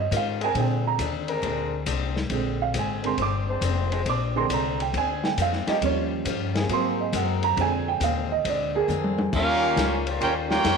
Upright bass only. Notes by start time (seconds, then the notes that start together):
0.11 G#2
0.54 A#2
0.98 D#2
1.42 D2
1.86 C2
2.30 A#1
2.74 G#1
3.18 G1
3.61 F1
4.06 A#1
4.49 C2
4.93 D2
5.37 F2
5.67 muted upright bass stroke
5.81 D#2
6.25 G2
6.69 G#2
7.12 F#2
7.57 F2
8.00 D#2
8.44 D2
8.88 F2
9.33 D#2
9.76 C#2
10.21 D#2
10.64 F2